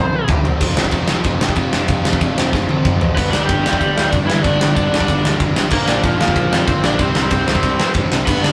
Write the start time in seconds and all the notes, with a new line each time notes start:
Already playing: C2 F2 C3 F3 C4 C5
0.12 F2 C3 F3 C4
0.28 G1 G2 D3 G3 D4 G4, kick, floor tom
0.43 C2 C3 G3 C4, floor tom
0.58 F1 F2 C3 F3 A3 C4 F4, kick, crash
0.63 C3
0.75 F1 F2 C3 F3 A3 C4 F4, snare
0.85 kick
0.91 F1 F2 C3 F3 A3 C4 F4, kick, crash
1.08 F1 F2 C3 F3 A3 C4 F4, snare
1.23 F1 F2 C3 F3 A3 C4 F4, kick, crash
1.40 F1 F2 C3 F3 A3 C4 F4, snare
1.49 kick
1.55 F1 F2 C3 F3 A3 C4 F4, kick, crash
1.70 F1 F2 C3 F3 A3 C4 F4, snare
1.87 F1 F2 C3 F3 A3 C4 F4, kick, crash
2.03 F1 F2 C3 F3 A3 C4 F4, snare
2.13 kick
2.19 F1 F2 C3 F3 A3 C4 F4, kick, crash
2.35 F1 F2 C3 F3 A3 C4 F4, snare
2.53 F1 F2 C3 F3 A3 C4 F4, kick, snare
2.69 F1 F2 C3 F3 A3 C4 F4, high tom
2.84 F1 F2 C3 F3 A3 C4 F4, kick, mid tom
3.00 A1 F2 C3 F3 A3 C4 F4, floor tom
3.15 G1 G2 D3 G3 B3 D4 B4, kick, crash
3.31 G1 D4 D5, snare
3.45 G3 G4
3.49 G1 G2 D3 G3, kick, ride
3.63 G1 G2 D3 G3 B3 D4, snare
3.73 kick
3.78 G1 G2 D3 G3 G4, kick, ride
3.96 D2, snare
4.09 F1 G2 D3 G3 D4 D5, kick, ride
4.14 B3 D4
4.26 G1 G2 D3 E3 G3 E4, snare
4.42 G1 G2 D3 G3 D4 D5, kick, ride
4.46 B3 D4
4.60 G1, snare
4.75 G1 G2 D3 G3 D4 D5, kick, ride
4.91 G1 G2 D3 G3 B3 D4, snare
5.00 kick
5.08 G1 G2 D3 G3, kick, ride
5.23 D2, snare
5.39 F1 G2 D3 G3 B3 D4, kick, ride
5.55 G1 G2 D3 G3, snare
5.70 A#1 A#2 D3 F3 A#3 D4 A#4, kick, crash
5.86 A#1 D4 D5, snare
6.02 A#1 A#2 F3 A#3 F4, kick, ride
6.18 A#1 A#2 D3 F3 A#3 D4 F4, snare
6.28 kick
6.34 A#1 A#2 F3 A#3, kick, ride
6.52 F2, snare
6.67 G1 A#2 D3 F3 A#3 C4 D4 C5, kick, ride
6.83 A#1 A#2 F3 A#3 D4 D5, snare
6.99 C2 C3 G3 C4 E4 C5, kick, ride
7.15 C2, snare
7.31 C2 C3 G3 C4 C5, kick, ride
7.46 C2 C3 G3 C4 E4, snare
7.55 kick
7.63 C2 C3 G3 C4, kick, ride
7.79 G2, snare
7.94 A1 C3 G3 C4 E4, kick, ride
8.12 C2 C3 G3 C4, snare
8.26 G1 G2 D3 G3 B3 D4 B4, kick, crash
8.42 G1 D4 D5, snare